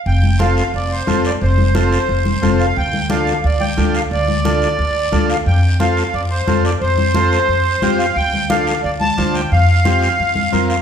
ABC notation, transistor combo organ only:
X:1
M:4/4
L:1/8
Q:1/4=178
K:F
V:1 name="Transistor combo organ"
z2 [CFA] z3 [CFA] z | z2 [CFA] z3 [CFA] z | z2 [DFA] z3 [DFA] z | z2 [DFA] z3 [DFA] z |
z2 [CFA] z3 [CFA] z | z2 [CFA] z3 [CFG] z | z2 [DFA] z3 [DFc] z | z2 [CFG] z3 [CFB] z |]